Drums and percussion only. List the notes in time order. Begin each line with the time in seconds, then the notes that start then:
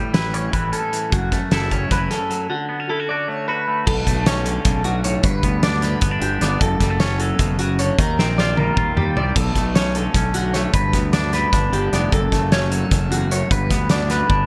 0.14 snare, closed hi-hat
0.34 closed hi-hat
0.53 kick, closed hi-hat
0.73 closed hi-hat
0.93 closed hi-hat
1.12 kick, closed hi-hat
1.32 kick, snare, closed hi-hat
1.51 snare, closed hi-hat
1.71 kick, closed hi-hat
1.91 kick, snare, closed hi-hat
2.11 snare, closed hi-hat
2.31 closed hi-hat
3.87 kick, crash
4.07 kick, closed hi-hat
4.26 snare, closed hi-hat
4.46 closed hi-hat
4.65 kick, snare, closed hi-hat
4.84 closed hi-hat
5.04 closed hi-hat
5.23 kick, closed hi-hat
5.43 kick, closed hi-hat
5.63 snare, closed hi-hat
5.82 snare, closed hi-hat
6.01 kick, closed hi-hat
6.22 closed hi-hat
6.41 snare, closed hi-hat
6.61 kick, closed hi-hat
6.80 kick, snare, closed hi-hat
7.00 snare, closed hi-hat
7.20 closed hi-hat
7.39 kick, snare, closed hi-hat
7.59 closed hi-hat
7.79 closed hi-hat
7.99 kick, closed hi-hat
8.19 snare
8.38 snare
8.57 high tom
8.77 kick, mid tom
8.97 mid tom
9.17 floor tom
9.36 kick, closed hi-hat, crash
9.56 kick, snare, closed hi-hat
9.75 snare, closed hi-hat
9.95 closed hi-hat
10.14 kick, snare, closed hi-hat
10.34 closed hi-hat
10.54 snare, closed hi-hat
10.74 kick, closed hi-hat
10.93 kick, snare, closed hi-hat
11.13 snare, closed hi-hat
11.33 snare, closed hi-hat
11.53 kick, snare, closed hi-hat
11.73 closed hi-hat
11.93 snare, closed hi-hat
12.12 kick, closed hi-hat
12.32 kick, snare, closed hi-hat
12.52 snare, closed hi-hat
12.72 closed hi-hat
12.91 kick, snare, closed hi-hat
13.12 closed hi-hat
13.31 closed hi-hat
13.51 kick, closed hi-hat
13.71 kick, snare, closed hi-hat
13.89 snare, closed hi-hat
14.10 snare, closed hi-hat
14.30 kick, high tom